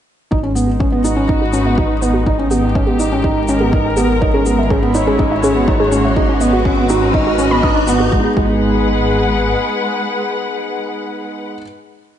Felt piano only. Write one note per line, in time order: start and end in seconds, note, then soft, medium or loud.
0.31 0.37 D#4 medium
0.43 0.50 C#4 medium
0.55 0.68 B3 medium
0.80 0.86 C#4 medium
0.92 0.99 B3 medium
1.04 1.11 D#4 medium
1.16 1.23 C#4 medium
1.28 1.41 D#4 medium
1.53 1.60 C#4 medium
1.65 1.72 B3 medium
1.78 1.91 D#4 medium
2.02 2.15 B3 medium
2.27 2.33 D#4 medium
2.39 2.45 C#4 medium
2.51 2.63 B3 medium
2.75 2.82 C#4 medium
2.88 2.94 B3 medium
3.00 3.06 D#4 medium
3.12 3.19 C#4 medium
3.24 3.37 D#4 medium
3.49 3.55 C#4 medium
3.61 3.67 B3 medium
3.73 3.86 D#4 medium
3.97 4.10 B3 medium
4.22 4.28 D#4 medium
4.34 4.40 C#4 medium
4.46 4.59 B3 medium
4.71 4.77 C#4 medium
4.82 4.89 B3 medium
4.95 5.01 D#4 medium
5.07 5.13 C#4 medium
5.19 5.32 D#4 medium
5.43 5.50 C#4 medium
5.55 5.62 B3 medium
5.68 5.80 D#4 medium
5.92 6.05 C#4 medium
6.16 6.23 D#4 medium
6.29 6.35 C#4 medium
6.41 6.53 B3 medium
6.65 6.72 C#4 medium
6.78 6.84 B3 medium
6.90 6.96 D#4 medium
7.02 7.08 C#4 medium
7.14 7.27 D#4 medium
7.38 7.45 C#4 medium
7.51 7.57 B3 medium
7.63 7.76 D#4 medium
7.87 8.00 B3 medium
8.12 8.26 G#3 medium
8.16 8.28 B3 medium
8.16 8.30 D#4 medium
8.24 8.32 G#4 medium
8.37 11.52 G#3 medium
8.41 11.56 B3 medium
8.45 11.60 D#4 medium
8.45 11.64 G#4 medium